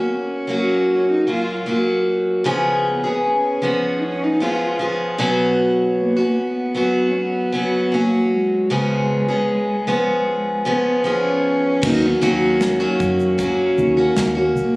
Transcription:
0.00 0.48 A#3 soft
0.00 0.15 B3 medium
0.00 0.48 C#4 soft
0.00 0.49 F#4 soft
0.14 0.90 C#4 medium
0.47 1.26 F#3 medium
0.47 1.26 A#3 medium
0.47 1.28 C#4 medium
0.47 1.28 F#4 medium
0.93 1.09 C#4 medium
1.11 1.28 D#4 medium
1.27 1.65 F#3 medium
1.27 1.66 A#3 medium
1.27 1.67 C#4 medium
1.27 1.66 F4 medium
1.66 2.45 F#3 soft
1.66 2.45 A#3 medium
1.66 2.46 C#4 medium
1.66 2.46 F#4 medium
2.44 3.03 C#3 medium
2.44 3.04 F3 medium
2.44 3.04 B3 medium
2.44 3.04 C#4 medium
2.44 3.03 G#4 medium
2.87 3.28 B3 medium
3.04 3.62 B3 soft
3.04 3.63 C#4 soft
3.04 3.62 G#4 soft
3.27 3.98 C#4 medium
3.62 4.39 F3 medium
3.62 4.41 B3 medium
3.62 4.42 C#4 medium
3.62 4.42 G#4 medium
3.99 4.05 D#4 medium
4.04 4.25 C#4 medium
4.23 4.45 D#4 medium
4.40 4.78 F3 medium
4.40 4.79 B3 medium
4.40 4.80 C#4 medium
4.40 4.81 F4 medium
4.40 4.81 G#4 medium
4.79 5.18 F3 soft
4.79 5.18 B3 medium
4.79 5.18 C#4 medium
4.79 5.19 G#4 medium
5.18 6.16 B2 medium
5.18 6.17 F#3 medium
5.18 6.19 B3 medium
5.18 6.18 C#4 medium
5.18 6.15 F#4 medium
5.99 6.40 A#3 medium
6.17 6.74 B3 soft
6.17 6.75 C#4 soft
6.17 6.75 F#4 soft
6.39 7.09 B3 medium
6.75 7.51 F#3 medium
6.75 7.53 B3 medium
6.75 7.54 C#4 medium
6.75 7.54 F#4 medium
7.09 7.16 C#4 medium
7.14 7.94 B3 loud
7.52 7.90 F#3 medium
7.52 7.93 B3 medium
7.52 7.93 C#4 medium
7.52 7.94 F#4 medium
7.92 8.70 F#3 soft
7.92 8.33 A#3 medium
7.92 8.71 C#4 medium
7.92 8.72 F#4 medium
8.31 10.66 G#3 medium
8.70 9.29 C#3 medium
8.70 9.29 F3 medium
8.70 9.29 B3 medium
8.70 9.29 C#4 medium
8.70 9.27 G#4 medium
9.28 9.87 B3 soft
9.28 9.87 C#4 soft
9.28 9.87 G#4 soft
9.87 10.64 F3 medium
9.87 10.65 B3 medium
9.87 10.66 C#4 medium
9.87 10.66 G#4 medium
10.65 11.03 F3 medium
10.65 11.04 B3 medium
10.65 11.03 B3 medium
10.65 11.05 C#4 medium
10.65 11.05 G#4 medium
11.04 11.81 F3 medium
11.04 11.83 B3 medium
11.04 11.83 C#4 medium
11.04 11.84 G#4 medium
11.08 11.87 C#4 medium
11.82 12.15 D#2 loud
11.82 12.20 F#3 medium
11.82 12.21 A#3 medium
11.82 12.21 C#4 medium
11.82 12.07 D#4 loud
11.82 12.22 F#4 medium
11.82 kick loud
11.82 crash loud
12.06 12.27 B3 medium
12.21 12.86 D#2 medium
12.21 12.80 D#3 medium
12.21 12.80 F#3 medium
12.21 12.79 A#3 medium
12.21 12.79 C#4 medium
12.21 13.40 C#4 medium
12.21 12.79 F#4 medium
12.21 shaker soft
12.61 snare loud
12.61 shaker medium
12.80 13.40 D#3 medium
12.80 13.37 F#3 medium
12.80 13.38 A#3 medium
12.80 13.39 C#4 medium
12.80 13.39 F#4 medium
13.00 13.48 F#2 medium
13.00 kick medium
13.00 shaker medium
13.19 shaker soft
13.38 13.97 F#3 medium
13.38 13.97 A#3 medium
13.38 13.97 C#4 medium
13.38 14.14 C#4 medium
13.38 13.96 F#4 medium
13.38 kick medium
13.38 shaker medium
13.78 14.10 D#2 medium
13.78 shaker medium
13.97 14.37 A#3 soft
13.97 14.36 C#4 soft
13.97 14.34 F#4 soft
14.17 14.56 D#2 medium
14.17 snare loud
14.17 shaker medium
14.35 14.76 A#3 soft
14.35 14.76 C#4 soft
14.35 14.76 F#4 soft
14.56 14.76 B1 medium
14.56 14.76 A#3 medium
14.56 shaker medium

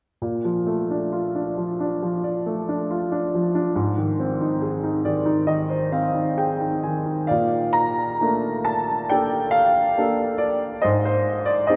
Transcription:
0.22 3.71 A#2 soft
0.45 1.56 F3 soft
0.67 2.41 A3 soft
0.91 1.34 D4 soft
1.12 2.85 F4 soft
1.35 1.79 D4 soft
1.57 2.01 F3 soft
1.80 2.67 D4 soft
2.03 3.33 F3 soft
2.24 3.71 D5 soft
2.46 3.72 A3 soft
2.69 3.10 D4 soft
2.91 3.73 F4 soft
3.12 3.54 D4 soft
3.35 3.75 F3 soft
3.55 3.75 D4 soft
3.76 7.25 G#2 soft
3.98 5.03 D#3 soft
4.20 5.88 C4 soft
4.41 4.82 D#4 soft
4.61 6.33 G#4 soft
4.84 5.24 D#4 soft
5.05 5.45 D#3 soft
5.05 5.45 D5 soft
5.26 6.13 D#4 soft
5.47 6.83 D#3 soft
5.47 5.88 D#5 soft
5.70 7.25 C5 soft
5.92 7.25 C4 soft
5.92 6.34 F5 soft
6.14 6.59 D#4 soft
6.37 7.27 G#4 soft
6.37 6.80 G5 soft
6.61 7.04 D#4 soft
6.83 7.28 D#3 soft
6.83 7.26 G#5 soft
7.06 7.28 D#4 soft
7.27 10.82 A#2 soft
7.27 9.06 D5 soft
7.27 7.71 F5 soft
7.73 8.68 A#5 medium
8.21 9.08 A3 soft
8.21 9.08 A#3 soft
8.21 9.08 D4 soft
8.65 9.11 A5 medium
9.10 9.96 A#3 soft
9.10 9.96 D4 soft
9.10 9.96 A4 soft
9.10 10.37 D5 soft
9.10 9.51 G5 medium
9.51 10.36 F5 medium
9.98 10.82 A#3 soft
9.98 10.83 D4 soft
9.98 10.83 A4 soft
10.38 10.85 D5 medium
10.82 11.76 G#2 soft
10.82 11.04 C5 soft
10.82 11.06 D#5 medium
11.05 11.45 C5 medium
11.46 11.69 D5 medium
11.67 11.76 C4 soft
11.67 11.76 D#4 soft
11.67 11.76 G#4 soft
11.67 11.76 C5 soft
11.67 11.76 D#5 medium

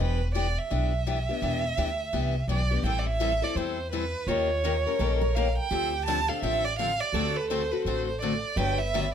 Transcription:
0.00 0.56 E1 medium
0.00 0.20 E3 medium
0.00 0.20 B3 medium
0.00 0.20 D4 medium
0.00 0.20 G4 medium
0.00 0.32 B4 medium
0.35 0.46 E3 medium
0.35 0.46 B3 medium
0.35 0.46 D4 medium
0.35 0.46 G4 medium
0.35 0.60 D5 medium
0.58 2.50 E5 medium
0.70 1.28 B1 medium
0.70 0.91 E3 medium
0.70 0.92 B3 medium
0.70 0.92 D4 medium
0.70 0.92 G4 medium
1.07 1.17 E3 medium
1.07 1.17 B3 medium
1.07 1.18 D4 medium
1.07 1.18 G4 medium
1.29 1.41 B3 soft
1.29 1.42 D4 medium
1.29 1.42 G4 soft
1.42 1.70 E1 medium
1.42 1.63 E3 medium
1.42 1.63 B3 medium
1.42 1.63 D4 medium
1.42 1.63 G4 medium
1.77 2.08 D2 medium
1.77 1.89 E3 medium
1.77 1.89 B3 medium
1.77 1.89 D4 medium
1.77 1.89 G4 medium
2.13 2.43 C2 medium
2.13 2.34 E3 medium
2.13 2.34 B3 medium
2.13 2.34 D4 medium
2.13 2.35 G4 medium
2.48 2.78 B1 medium
2.48 2.60 E3 medium
2.48 2.60 B3 medium
2.48 2.60 D4 medium
2.48 2.61 G4 medium
2.48 2.83 D5 medium
2.71 2.85 B3 soft
2.71 2.84 D4 soft
2.71 2.84 G4 medium
2.83 3.41 A1 medium
2.83 3.06 E3 medium
2.83 3.06 G3 medium
2.83 3.06 C4 medium
2.83 4.27 E4 medium
2.83 3.06 E4 medium
2.83 3.06 A4 medium
2.83 3.00 G5 medium
2.99 3.08 D5 medium
3.07 3.45 E5 medium
3.20 3.31 E3 medium
3.20 3.32 G3 medium
3.20 3.32 C4 medium
3.20 3.32 E4 medium
3.20 3.32 A4 medium
3.42 3.56 C4 soft
3.42 3.56 E4 soft
3.42 3.55 A4 medium
3.42 3.57 D5 medium
3.55 4.13 E2 medium
3.55 3.77 E3 medium
3.55 3.78 G3 medium
3.55 3.78 C4 medium
3.55 3.78 E4 medium
3.55 3.78 A4 medium
3.55 3.92 C5 medium
3.92 4.03 E3 medium
3.92 4.04 G3 medium
3.92 4.04 C4 medium
3.92 4.04 E4 medium
3.92 4.04 A4 medium
3.92 4.29 B4 medium
4.27 4.84 D#2 medium
4.27 4.49 D#3 medium
4.27 4.49 A#3 medium
4.27 4.49 C#4 medium
4.27 4.95 F4 medium
4.27 4.49 G4 medium
4.27 4.49 A#4 medium
4.27 5.36 C#5 medium
4.64 4.75 D#3 medium
4.64 4.75 A#3 medium
4.64 4.75 C#4 medium
4.64 4.75 G4 medium
4.64 4.76 A#4 loud
4.87 4.99 C#4 soft
4.87 4.99 G4 soft
4.87 4.99 A#4 medium
4.99 5.56 A#1 medium
4.99 5.21 D#3 medium
4.99 5.21 A#3 medium
4.99 5.21 C#4 medium
4.99 5.21 G4 medium
4.99 5.20 A4 medium
4.99 5.21 A#4 medium
5.21 5.70 A#4 medium
5.35 5.47 D#3 medium
5.35 5.47 A#3 medium
5.35 5.47 C#4 medium
5.35 5.47 G4 medium
5.35 5.47 A#4 medium
5.35 5.57 F5 medium
5.58 6.04 G5 medium
5.71 6.28 D2 medium
5.71 5.92 D3 medium
5.71 5.92 F3 medium
5.71 5.92 C4 medium
5.71 5.92 D4 medium
5.71 7.13 G4 medium
5.71 5.93 A4 medium
6.06 6.18 D3 medium
6.06 6.18 F3 medium
6.06 6.18 C4 loud
6.06 6.18 D4 medium
6.06 6.19 A4 medium
6.06 6.30 A5 medium
6.29 6.42 C4 soft
6.29 6.42 D4 soft
6.29 6.42 A4 medium
6.29 6.42 F5 medium
6.42 6.99 A1 medium
6.42 6.63 D3 medium
6.42 6.64 F3 medium
6.42 6.64 C4 medium
6.42 6.64 D4 medium
6.42 6.64 A4 medium
6.42 6.66 E5 medium
6.65 6.78 D5 medium
6.79 6.89 D3 medium
6.79 6.90 F3 medium
6.79 6.90 C4 medium
6.79 6.90 D4 medium
6.79 6.90 A4 medium
6.79 7.02 F5 medium
7.00 7.38 D5 medium
7.13 7.70 D2 medium
7.13 7.35 D3 medium
7.13 7.35 A3 medium
7.13 7.35 C4 medium
7.13 7.35 F#4 medium
7.13 8.39 A4 medium
7.13 7.36 A4 medium
7.36 7.50 B4 medium
7.50 7.61 D3 medium
7.50 7.61 A3 medium
7.50 7.61 C4 medium
7.50 7.61 F#4 medium
7.50 7.62 A4 medium
7.50 7.73 C5 medium
7.72 7.85 C4 soft
7.72 7.85 F#4 medium
7.72 7.85 A4 medium
7.72 7.85 B4 medium
7.85 8.42 A1 medium
7.85 8.07 D3 medium
7.85 8.07 A3 medium
7.85 8.07 C4 medium
7.85 8.07 F#4 medium
7.85 8.07 A4 medium
7.85 8.06 C5 medium
8.07 8.20 C5 medium
8.21 8.33 D3 medium
8.21 8.33 A3 medium
8.21 8.33 C4 medium
8.21 8.33 F#4 medium
8.21 8.33 A4 medium
8.21 8.59 D5 medium
8.56 9.14 G1 medium
8.56 8.78 D3 medium
8.56 8.79 F#3 medium
8.56 8.79 B3 medium
8.56 8.79 D4 medium
8.56 8.79 G4 medium
8.56 9.14 B4 medium
8.56 8.80 G5 medium
8.79 9.13 E5 medium
8.94 9.04 D3 medium
8.94 9.05 F#3 medium
8.94 9.05 B3 medium
8.94 9.05 D4 medium
8.94 9.05 G4 medium

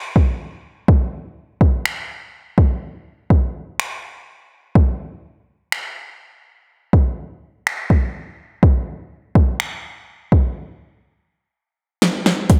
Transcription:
0.16 kick loud
0.88 kick loud
1.61 kick medium
1.86 finger snap loud
2.58 kick medium
3.30 kick medium
3.80 finger snap loud
4.75 kick loud
5.72 finger snap loud
6.93 kick medium
7.67 finger snap medium
7.90 kick medium
8.63 kick loud
9.35 kick medium
9.60 finger snap loud
10.32 kick medium
12.02 snare medium
12.26 snare medium
12.50 kick loud
12.50 closed hi-hat medium

